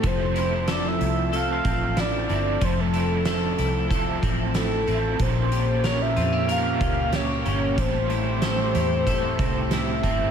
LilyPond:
<<
  \new Staff \with { instrumentName = "Soft synth lead" } { \time 4/4 \key f \major \tempo 4 = 93 c''4 d''16 e''8. f''16 f''8. d''4 | c''16 a'8. a'4 r4 a'4 | c''4 des''16 e''8. f''4 des''4 | c''2. e''4 | }
  \new Staff \with { instrumentName = "Clean electric guitar" } { \time 4/4 \key f \major f8 e'8 a'4 a'8 c'8 e'8 c'8 | f8 e'8 a'8 e'8 a'8 c'8 e'8 c'8 | bes,8 g'8 bes'8 f'16 g'16 bes'8 des'8 g'8 des'8 | a,8 e'8 a'8 e'8 a'8 c'8 e'8 c'8 | }
  \new Staff \with { instrumentName = "Overdriven electric guitar" } { \time 4/4 \key f \major <f a c' e' a'>2 <a c' a'>4. <c' e' a'>8 | <f a c' e' a'>2 <a c' e' a'>4. <c' e' a'>8 | <bes, f bes des' g' bes'>2 <bes des' g' bes'>4. <bes des' g' bes'>8 | <a, e g c' e' a'>2 <g c' e' a'>4. <g c' e' a'>8 | }
  \new Staff \with { instrumentName = "Ambient pad" } { \time 4/4 \key f \major <f c' a'>1~ | <f c' a'>1 | <bes des' g'>1 | <a c' g'>1 | }
  \new Staff \with { instrumentName = "Fingered electric bass" } { \clef bass \time 4/4 \key f \major f,,4. c,4 a,,4 g,,8 | f,,4. c,4 a,,4 a,,8 | bes,,4. f,4 des,4 g,,8 | a,,4. e,4 c,4 g,,8 | }
  \new DrumStaff \with { instrumentName = "Drums" } \drummode { \time 4/4 <hh bd>8 hh8 <hh sn>8 hh8 hh8 <hh bd>8 <hh sn>8 hh8 | <hh bd>8 hh8 <hh sn>8 hh8 <hh bd>8 <hh bd>8 <hh sn>8 hh8 | <hh bd>8 hh8 <hh sn>8 hh8 hh8 <hh bd>8 <hh sn>8 hh8 | <hh bd>8 hh8 <hh sn>8 hh8 <hh bd>8 <hh bd>8 <hh sn>8 <hh bd>8 | }
>>